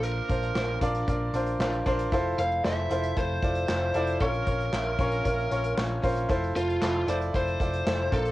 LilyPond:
<<
  \new Staff \with { instrumentName = "Lead electric guitar" } { \time 4/4 \key f \major \tempo 4 = 115 bes'4. r2 r8 | r8 f''8 e''4 c''2 | bes'2. r4 | r8 f'8 f'8 c''8 c''4. a'8 | }
  \new Staff \with { instrumentName = "Upright piano" } { \time 4/4 \key f \major <d' f' bes' c''>8 <d' f' bes' c''>8 <d' f' bes' c''>8 <d' f' bes' d''>8 <d' f' bes' d''>8 <d' f' bes' c''>8 <d' f' bes' c''>8 <d' f' bes' c''>8 | <e' f' a' c''>8 <e' f' a' c''>8 <e' f' a' c''>8 <e' f' a' c''>8 <e' f' a' c''>8 <e' f' a' d''>8 <e' f' a' c''>8 <e' f' a' d''>8 | <des' f' bes' des''>8 <des' f' bes' des''>8 <des' f' bes' e''>8 <des' f' bes' des''>8 <des' f' bes' des''>8 <des' f' bes' des''>8 <des' f' bes' des''>8 <des' f' bes' c''>8 | <e' f' a' c''>8 <e' f' a' c''>8 <e' f' a' c''>8 <e' f' a' d''>8 <e' f' a' c''>8 <e' f' a' d''>8 <e' f' a' c''>8 <d' f' bes' c''>8 | }
  \new Staff \with { instrumentName = "Upright piano" } { \clef bass \time 4/4 \key f \major bes,4 r2. | r1 | bes,4. r2 r8 | r2. r8 bes,8 | }
  \new Staff \with { instrumentName = "Picked electric bass" } { \clef bass \time 4/4 \key f \major bes,,8 bes,,8 bes,,8 bes,,8 bes,,8 bes,,8 bes,,8 bes,,8 | f,,8 f,,8 f,,8 f,,8 f,,8 f,,8 f,,8 f,,8 | bes,,8 bes,,8 bes,,8 bes,,8 bes,,8 bes,,8 bes,,8 bes,,8 | f,,8 f,,8 f,,8 f,,8 f,,8 f,,8 f,,8 bes,,8 | }
  \new DrumStaff \with { instrumentName = "Drums" } \drummode { \time 4/4 hh8 <hh bd>16 hh16 <hc sn>8 <hh bd>16 hh16 <hh bd>8 hh16 hh16 <hc sn>16 hh16 <hh bd>16 hh16 | <hh bd>8 hh16 hh16 <hc sn>8 hh16 hh16 <hh bd>8 <hh bd>16 hh16 <hc sn>8 hh16 hh16 | <hh bd>16 hh16 <hh bd>16 hh16 <hc sn>8 <hh bd>16 hh16 <hh bd>16 hh16 hh16 hh16 <hc sn>8 <hho bd>16 hh16 | <hh bd>16 hh16 hh16 hh16 <hc sn>8 hh16 hh16 <hh bd>16 hh16 <hh bd>16 hh16 <hc sn>16 hh16 <hh bd sn>16 hh16 | }
>>